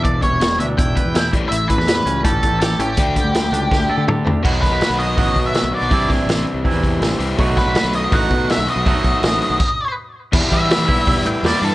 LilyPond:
<<
  \new Staff \with { instrumentName = "Lead electric guitar" } { \time 4/4 \key d \major \tempo 4 = 163 d''8 cis''4 e''8 g''4. r8 | e''8 b'4. a'4 a'8 g'8~ | g'2. r4 | \key b \phrygian r8 b'4 dis''4~ dis''16 e''8. d''8~ |
d''8 r2. r8 | r8 b'4 dis''8 fis''4 e''8 dis''8~ | dis''2. r4 | r8 e''2 g''8 d''8 a'8 | }
  \new Staff \with { instrumentName = "Transistor combo organ" } { \time 4/4 \key d \major r1 | r1 | r1 | \key b \phrygian r1 |
r1 | r1 | r1 | <g' b' e'' b''>1 | }
  \new Staff \with { instrumentName = "Clean electric guitar" } { \time 4/4 \key d \major <e d' e' b'>8 g8 g8 d'8 e'8 b'8 e'8 a,8 | a,8 e8 g8 cis'8 g'8 a'8 g'8 cis'8 | d8 g8 g8 d'8 g'8 a'8 g'8 d'8 | \key b \phrygian <b, dis fis b fis'>2 <b, dis fis b fis'>2 |
<c e g d' e'>2 <c e g d' e'>2 | <b, fis a dis' fis'>2 <b, fis a dis' fis'>2 | <b, fis a dis' fis'>2 r2 | e8 g8 b8 e'8 g8 e8 g8 e8 | }
  \new Staff \with { instrumentName = "Overdriven electric guitar" } { \clef bass \time 4/4 \key d \major <e, b,>8 <e, b,>8 <e, b,>8 <e, b,>8 <e, b,>8 <e, b,>8 <e, b,>8 <a, e g>8 | <a, e>8 <a, e>8 <a, e>8 <a, e>8 <a, e>8 <a, e>8 <a, e>8 <a, e>8 | <d a d'>8 <d a>8 <d a>8 <d a>8 <d a>8 <d a>8 <d a>8 <d a>8 | \key b \phrygian <b, fis b dis' fis'>2.~ <b, fis b dis' fis'>8 <b, fis b dis' fis'>8 |
<c e g c' g'>2.~ <c e g c' g'>8 <c e g c' g'>8 | <b, dis a b fis'>2.~ <b, dis a b fis'>8 <b, dis a b fis'>8 | <b, dis a b fis'>2 r2 | <e, b, e g b e'>4 <e g b e'>8 <e g b e'>4 <e g b e'>8 <e, b, e g b e'>4 | }
  \new Staff \with { instrumentName = "Fingered electric bass" } { \clef bass \time 4/4 \key d \major e,,8 r16 e,,8. d,8 e,,8 r16 e,8. a,,16 r16 | a,,8. e,8. cis,8 g,,8 r16 a,,8. a,,8 | d,8 r16 d,8. cis,8 d,8 r16 d8. d,16 r16 | \key b \phrygian b,,8. b,,16 r16 b,,8. a,,8 b,8. b,,16 r16 b,,16 |
c,8 c,16 r16 a,,8 r16 c,16 r16 e,8. a,,8 c,8 | b,,8. b,,16 r16 b,,8. a,,8 b,8. b,,16 r16 b,,16~ | b,,16 r16 b,,16 r16 a,,8 r16 b,,16 r2 | e,16 r16 e8. e16 b,,16 r16 b,,16 r16 a,16 r16 e,16 r16 g,16 r16 | }
  \new DrumStaff \with { instrumentName = "Drums" } \drummode { \time 4/4 <hh bd>8 <hh bd>8 <hh sn>8 hh8 <hh bd>8 <hh bd>8 <hh sn>16 sn16 <hh bd>8 | hh8 <hh bd>16 sn16 <hh sn>8 hh8 <hh bd>8 <hh bd>8 <hh sn>8 hh8 | <hh bd>8 <hh bd>8 <hh sn>8 hh8 <bd sn>4 toml8 tomfh8 | <cymc bd>8 <hho bd sn>8 <hho sn>8 hho8 <hho bd>8 <hho bd>8 <hho sn>8 hho8 |
<hho bd>8 <hho bd sn>8 <hho sn>8 hho8 <hho bd>8 <hho bd>8 <hho sn>8 hho8 | <hho bd>8 <hho bd sn>8 <hho sn>8 hho8 <hho bd>8 <hho bd>8 <hho sn>16 sn16 hho8 | <hho bd>8 <hho bd>8 <hho sn>8 hho8 <cymc bd>4 r4 | <cymc bd>8 <hho bd>8 <hho sn>8 <hho bd>8 <hho bd>8 hho8 <hho sn>8 hho8 | }
>>